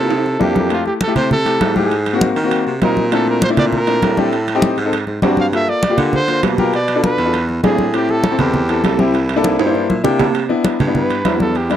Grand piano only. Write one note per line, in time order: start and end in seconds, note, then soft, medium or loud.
0.02 0.10 A#3 medium
0.02 0.10 F4 medium
0.02 0.10 A4 medium
0.39 0.70 A#3 medium
0.39 0.70 D4 medium
0.39 0.68 E4 medium
0.39 0.70 A4 medium
0.69 0.96 A3 medium
0.69 0.97 E4 medium
0.69 0.97 G4 medium
1.07 1.34 A3 medium
1.07 1.35 E4 medium
1.07 1.35 G4 medium
1.45 1.67 A3 medium
1.45 1.67 E4 medium
1.45 1.67 G4 medium
1.76 1.91 A3 medium
1.76 1.91 E4 medium
1.76 1.91 G4 medium
2.13 2.35 A#3 loud
2.13 2.35 C4 medium
2.13 2.35 F#4 medium
2.44 2.70 A#3 medium
2.44 2.70 C4 medium
2.44 2.71 F#4 medium
2.82 3.03 A#3 medium
2.82 3.03 C4 medium
2.82 3.03 D#4 medium
3.12 3.38 A3 medium
3.12 3.38 C4 medium
3.12 3.39 D4 medium
3.12 3.39 E4 medium
3.49 3.76 A3 medium
3.49 3.76 C4 medium
3.49 3.76 D4 medium
3.49 3.76 E4 medium
3.87 4.08 A3 medium
3.87 4.08 C4 medium
3.87 4.08 D4 medium
3.87 4.09 E4 medium
4.17 4.32 A3 medium
4.17 4.32 C4 medium
4.17 4.33 D4 medium
4.17 4.33 G4 medium
4.55 4.76 C4 loud
4.55 4.76 D#4 medium
4.55 4.76 G4 loud
4.85 4.92 C4 medium
4.85 4.93 D#4 medium
4.85 4.93 A4 medium
5.22 5.43 C4 medium
5.22 5.44 D4 medium
5.22 5.44 F#4 medium
5.53 5.79 A#3 medium
5.53 5.79 F4 medium
5.53 5.80 A4 medium
5.89 6.16 A#3 medium
5.89 6.17 F4 medium
5.89 6.17 G4 medium
6.28 6.49 A#3 medium
6.28 6.49 F4 medium
6.28 6.50 C5 medium
6.58 6.73 A#3 medium
6.58 6.74 F4 medium
6.58 6.74 G4 loud
6.96 7.17 D4 medium
6.96 7.17 F4 medium
6.96 7.17 A4 medium
7.25 7.33 D4 medium
7.25 7.33 F4 medium
7.25 7.34 A4 medium
7.63 7.84 C4 medium
7.63 7.85 D4 medium
7.63 7.85 G#4 medium
7.93 8.20 C4 medium
7.93 8.20 E4 medium
7.93 8.20 G4 medium
8.31 8.57 C4 medium
8.31 8.58 E4 medium
8.31 8.58 A4 medium
8.69 8.90 C4 medium
8.69 8.90 E4 medium
8.69 8.91 G4 medium
8.99 9.14 C4 medium
8.99 9.14 E4 medium
8.99 9.14 G4 medium
9.36 9.58 A#3 loud
9.36 9.58 D4 medium
9.36 9.58 E4 medium
9.36 9.58 A4 loud
9.59 9.65 C5 medium
9.66 9.93 A#3 medium
9.66 9.93 D4 medium
9.66 9.93 E4 medium
9.66 9.93 C5 medium
9.74 9.88 D5 medium
9.89 10.03 E5 medium
10.03 10.25 A#3 medium
10.03 10.25 D4 medium
10.03 10.25 E4 medium
10.03 10.26 G4 loud
10.03 10.18 G5 medium
10.19 10.33 A5 medium
10.49 10.76 B3 medium
10.49 10.76 D4 medium
10.49 10.76 E4 medium
10.87 11.14 B3 medium
10.87 11.14 D4 medium
10.87 11.14 E4 medium
11.25 11.55 B3 medium
11.25 11.56 D4 medium
11.25 11.56 E4 medium
11.70 11.77 G3 medium
11.70 11.77 A#3 medium
11.70 11.77 D4 medium